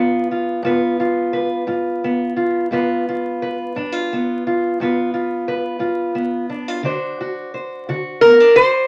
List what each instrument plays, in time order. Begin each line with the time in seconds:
Already playing: steel-string acoustic guitar G2 B3 F4 B4
0.31 steel-string acoustic guitar F4
0.63 steel-string acoustic guitar G2 B3 F4 B4
1.00 steel-string acoustic guitar F4
1.33 steel-string acoustic guitar B4
1.67 steel-string acoustic guitar G2 F4
2.04 steel-string acoustic guitar B3
2.37 steel-string acoustic guitar F4
2.71 steel-string acoustic guitar G2 B3 F4 B4
3.09 steel-string acoustic guitar F4
3.42 steel-string acoustic guitar B4
3.76 steel-string acoustic guitar G2 D4
3.92 steel-string acoustic guitar F4
4.13 steel-string acoustic guitar B3
4.47 steel-string acoustic guitar F4
4.80 steel-string acoustic guitar G2 B3 F4 B4
5.14 steel-string acoustic guitar F4
5.48 steel-string acoustic guitar B4
5.79 steel-string acoustic guitar G2 F4
6.15 steel-string acoustic guitar B3
6.49 steel-string acoustic guitar D4
6.68 steel-string acoustic guitar F4
6.83 steel-string acoustic guitar D3 D4 F#4 C5
7.21 steel-string acoustic guitar F#4
7.54 steel-string acoustic guitar C5
7.89 steel-string acoustic guitar D3 F#4
8.21 steel-string acoustic guitar B3, resonator guitar played with a steel bar A#4
8.40 steel-string acoustic guitar D4
8.56 steel-string acoustic guitar F#4, resonator guitar played with a steel bar C5